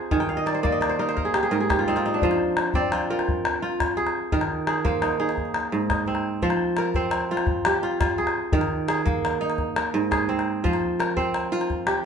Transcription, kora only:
0.00 0.17 F3 medium
0.00 0.33 C4 medium
0.00 0.93 F4 medium
0.00 0.26 G#4 medium
0.00 0.15 A#4 medium
0.00 0.54 C5 medium
0.11 1.22 D#3 medium
0.11 1.02 G#5 medium
0.20 1.13 G5 medium
0.29 1.29 F5 medium
0.37 0.69 D#5 medium
0.46 0.63 D5 medium
0.54 0.89 C5 medium
0.63 2.56 A#3 medium
0.63 0.80 D5 medium
0.72 1.79 D#5 medium
0.81 1.05 D5 medium
0.89 1.08 C5 medium
0.99 1.87 D#4 medium
0.99 1.16 A#4 medium
1.09 2.23 C5 medium
1.17 1.51 A#4 medium
1.25 1.42 G#4 medium
1.34 1.57 G4 medium
1.43 1.60 G#4 medium
1.51 2.27 G#2 medium
1.51 2.79 A#4 medium
1.60 2.97 G#4 medium
1.70 3.11 G4 medium
1.79 1.96 F4 medium
1.88 2.75 C4 medium
1.88 2.05 D#4 medium
1.97 2.92 F4 medium
2.06 2.81 D#4 medium
2.14 3.82 D4 medium
2.23 4.38 F3 medium
2.23 3.42 C5 medium
2.75 4.55 C4 medium
2.75 3.86 D5 medium
2.93 3.10 F4 medium
3.10 3.62 F4 medium
3.10 4.32 A#4 medium
3.62 5.14 F4 medium
3.97 4.67 G#4 medium
4.32 5.43 D#3 medium
4.32 5.60 A#4 medium
4.67 5.19 G#4 medium
4.85 6.77 A#3 medium
4.85 6.04 C5 medium
5.02 5.19 D#4 medium
5.20 6.82 D#4 medium
5.20 6.56 G#4 medium
5.72 6.48 G#2 medium
5.90 6.97 D#5 medium
6.07 6.95 C4 medium
6.43 8.59 F3 medium
6.43 6.95 C5 medium
6.78 8.06 A#4 medium
6.96 8.76 C4 medium
6.96 8.15 C5 medium
7.31 7.82 F4 medium
7.66 8.24 G4 medium
7.83 8.00 F4 medium
8.00 9.52 F4 medium
8.18 8.88 G#4 medium
8.53 9.64 D#3 medium
8.53 9.76 A#4 medium
8.88 10.11 G#4 medium
9.05 10.98 A#3 medium
9.41 11.03 D#4 medium
9.76 10.99 A#4 medium
9.94 10.69 G#2 medium
10.11 11.48 G#4 medium
10.29 11.16 C4 medium
10.64 12.05 F3 medium
10.64 11.16 C5 medium
10.99 12.05 A#4 medium
11.17 12.05 C4 medium
11.17 12.05 C5 medium
11.52 12.04 F4 medium
11.87 12.05 G4 medium

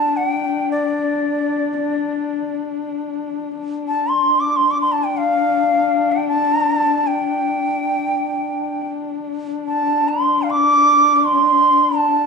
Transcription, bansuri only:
0.00 0.18 A5 medium
0.17 0.69 G5 medium
0.71 2.56 D5 medium
3.88 4.11 A5 medium
4.09 4.42 C6 medium
4.40 4.58 D6 medium
4.56 4.72 C6 medium
4.71 4.80 D6 medium
4.81 4.93 C6 medium
4.92 5.06 A5 medium
5.04 5.19 G5 medium
5.17 6.13 F5 medium
6.12 6.27 G5 medium
6.29 7.08 A5 medium
7.07 8.90 G5 medium
9.67 10.10 A5 medium
10.08 10.44 C6 medium
10.42 10.52 F5 medium
10.51 11.16 D6 medium
11.16 11.26 D6 medium
11.25 11.98 C6 medium
11.96 12.27 A5 medium

